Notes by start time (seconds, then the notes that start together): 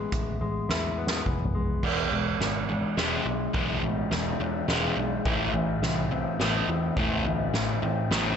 Already playing: E3 G#3 B3 E4
0.12 A1 A2, kick, closed hi-hat
0.41 A1 G#3
0.69 E2 E4, snare
0.98 B3
1.07 snare
1.26 F1 E3, kick
1.45 floor tom
1.55 G#3
1.83 E1 E2 E3 G#3 B3, kick, crash
2.12 E1 B2 E3 G#3
2.40 G#1 E3 G#3, snare, ride
2.69 E3 G#3 D4
2.97 E1 E3 G#3 B3, snare, ride
3.26 B1 E3 G#3 D4
3.53 B1 E2 E3 G#3 B3, kick, ride
3.83 A1 B2 E3 G#3, ride
4.11 E1 E3 G#3, snare, ride
4.40 E2 E3 G#3 D4
4.68 E1 E3 G#3 B3, snare, ride
4.97 B1 E3 G#3 D4
5.25 A1 A2 E3 A3, kick, ride
5.54 A1 A2 E3
5.82 C2 A2 E3, snare, ride
6.11 A2 E3 C4
6.39 A1 A2 E3 A3 B3, snare, ride
6.68 E2 A2 E3 C4
6.96 E1 A2 E3 A3, kick, ride
7.25 D2 A2 E3, ride
7.54 A1 A2 E3, snare, ride
7.82 A2 E3 C4
8.11 A1 A2 E3 A3 B3, snare, ride